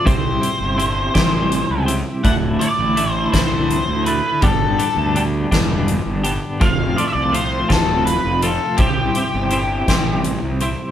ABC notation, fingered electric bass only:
X:1
M:6/8
L:1/16
Q:3/8=55
K:Clyd
V:1 name="Fingered electric bass" clef=bass
C,,2 z G,,,3 A,,,3 ^C,,2 z | D,,,2 z A,,,3 C,,3 D,,2 z | G,,,2 z D,,3 E,,,3 G,,,2 z | =F,,,2 z C,,3 D,,,3 F,,,2 z |
C,,2 z G,,,3 A,,,3 C,,2 z |]